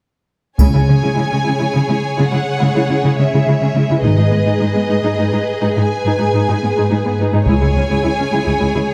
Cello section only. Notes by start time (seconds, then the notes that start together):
0.59 C#3
0.74 C#3
0.89 C#3
1.04 C#3
1.19 C#3
1.33 C#3
1.47 C#3
1.61 C#3
1.75 C#3
1.89 C#3
2.18 C#3
2.33 C#3
2.61 C#3
2.76 C#3
2.89 C#3
3.04 C#3
3.19 C#3
3.33 C#3
3.47 C#3
3.61 C#3
3.75 C#3
3.90 C#3
4.03 G#2
4.18 G#2
4.33 G#2
4.46 G#2
4.61 G#2
4.76 G#2
4.90 G#2
5.03 G#2
5.19 G#2
5.33 G#2
5.63 G#2
5.77 G#2
6.05 G#2
6.20 G#2
6.33 G#2
6.49 G#2
6.63 G#2
6.77 G#2
6.92 G#2
7.05 G#2
7.19 G#2
7.33 G#2
7.47 C#2
7.62 C#2
7.76 C#2
7.91 C#2
8.05 C#2
8.20 C#2
8.33 C#2
8.47 C#2
8.62 C#2
8.76 C#2